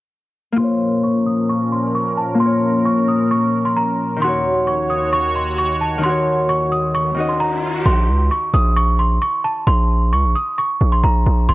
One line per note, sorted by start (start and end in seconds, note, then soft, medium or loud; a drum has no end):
0.53 2.34 A#3 medium
0.53 2.38 F4 medium
0.58 4.18 A#2 medium
0.58 4.18 F3 medium
0.58 4.18 C#4 medium
0.58 4.18 A#4 medium
0.58 2.52 C5 medium
0.58 1.01 C6 medium
0.64 2.45 C#5 medium
1.04 1.23 C#6 medium
1.26 1.46 D#6 medium
1.49 1.69 C#6 medium
1.72 1.91 C6 medium
1.95 2.14 C#6 medium
2.17 2.37 A5 medium
2.35 5.56 A#3 medium
2.35 4.30 F4 medium
2.40 4.54 A#4 medium
2.40 2.83 C6 loud
2.46 4.27 C#5 medium
2.86 3.05 C#6 medium
3.08 3.28 D#6 medium
3.31 3.63 C#6 medium
3.65 3.75 C6 medium
3.76 4.19 A#5 medium
4.16 5.97 D#3 medium
4.16 6.01 D#4 medium
4.22 7.82 D#2 medium
4.22 7.82 D#3 medium
4.22 7.82 F#4 medium
4.22 6.05 F#4 medium
4.22 7.82 C#5 medium
4.22 4.65 C6 loud
4.27 6.09 C#5 medium
4.67 4.87 C#6 medium
4.90 5.10 D#6 medium
5.13 5.32 C#6 loud
5.36 5.55 C6 medium
5.58 5.78 C#6 medium
5.81 6.01 A5 medium
5.98 7.13 D#3 medium
5.98 7.16 D#4 medium
6.04 7.18 F#4 medium
6.04 6.46 C6 medium
6.04 riser medium
6.09 8.00 C#5 medium
6.49 6.69 C#6 medium
6.72 6.91 D#6 medium
6.95 7.27 C#6 medium
7.15 7.91 D#3 soft
7.15 9.87 D#4 medium
7.15 9.62 F#4 soft
7.20 8.99 D#5 medium
7.29 7.39 C6 medium
7.40 7.83 A#5 medium
7.85 8.10 A#1 loud
7.85 8.28 C6 medium
8.08 8.30 C#2 loud
8.31 8.51 C#6 medium
8.54 9.19 A#1 loud
8.54 8.73 D#6 medium
8.77 8.96 C#6 medium
8.99 9.19 C6 medium
9.22 9.41 C#6 medium
9.45 9.64 A5 medium
9.67 10.14 A#1 loud
9.67 10.10 C6 loud
10.13 10.26 C#2 loud
10.13 10.32 C#6 medium
10.24 10.35 A#1 loud
10.36 10.55 D#6 medium
10.58 10.90 C#6 medium
10.81 11.03 A#1 loud
10.92 11.02 C6 medium
11.04 11.25 A#1 loud
11.04 11.46 A#5 medium
11.26 11.48 A#1 loud
11.49 11.54 D#1 loud
11.49 11.54 C6 loud